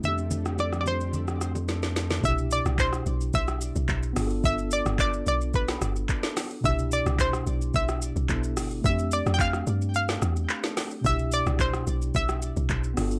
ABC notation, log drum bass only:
X:1
M:4/4
L:1/16
Q:1/4=109
K:C
V:1 name="Log drum bass" clef=bass
z16 | C,,3 C,,3 B,,,2 B,,,3 C,, B,,,2 G,,,2 | G,,,3 G,,,3 B,,,4 G,,,2 z4 | C,,3 C,,3 B,,,2 B,,,3 C,, B,,,2 G,,,2 |
F,,3 F,,3 G,,4 E,,2 z4 | C,,3 C,,3 B,,,2 B,,,3 C,, B,,,2 G,,,2 |]